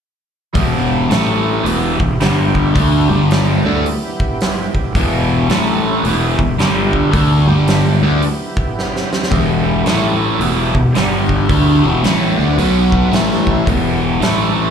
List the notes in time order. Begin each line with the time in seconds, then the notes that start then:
0.53 E1 E2 B2 E3 B3 E4 G4, kick, open hi-hat
1.09 A1 A2 E3 A3 E4 A4, snare, open hi-hat
1.63 E1 E2 B2 E3 B3 E4 G4, open hi-hat
1.99 E1 E2 B2, kick
2.19 G1 G2 D3 G3 D4 G4, snare, open hi-hat
2.55 kick
2.74 D2 D3 A3 D4, kick, open hi-hat
3.08 G1 G2 D3 G3 D4 G4
3.31 snare, open hi-hat
3.63 D2 D3 A3 B3 D4 E4 G4
3.86 open hi-hat
4.20 kick
4.40 snare, open hi-hat
4.75 kick
4.95 E1 E2 B2 E3, kick, open hi-hat
5.49 A1 A2 E3 A3 E4 A4, snare, open hi-hat
6.03 E1 E2 B2 E3 B3 E4 G4, open hi-hat
6.38 E1 E2 B2, kick
6.58 G1 G2 D3 G3 D4 G4, snare, open hi-hat
6.93 kick
7.11 D2 D3 A3 D4, kick, open hi-hat
7.47 G1 G2 D3 G3 D4 G4
7.67 snare, open hi-hat
8.01 D2 D3 A3 B3 D4 E4 G4
8.22 open hi-hat
8.57 kick
8.79 snare
8.96 snare
9.13 snare
9.23 snare
9.31 E1 E2 B2 E3, kick, open hi-hat
9.82 A1 A2 E3 A3 E4 A4, open hi-hat
9.87 A3, snare
10.38 E1 E2 B2 E3 B3 E4 G4, open hi-hat
10.74 E1 E2 B2, kick
10.93 G1 G2 D3 G3 D4 G4, snare, open hi-hat
11.29 kick
11.46 D2 D3 A3 B3 D4 E4 G4, kick, open hi-hat
11.82 E1 E2 B2 E3
12.03 A1 A2 E3 A3, snare, open hi-hat
12.38 D2 D3 A3 D4
12.53 B3 F#4 B4
12.58 B1 B2 F#3 B3, open hi-hat
12.92 kick
13.12 A1 A2 E3 A3 E4 A4, snare, open hi-hat
13.32 snare
13.47 kick
13.66 E1 E2 B2 E3 B3 E4 G4, kick, open hi-hat
14.20 A1 A2 E3 A3 E4 A4, snare, open hi-hat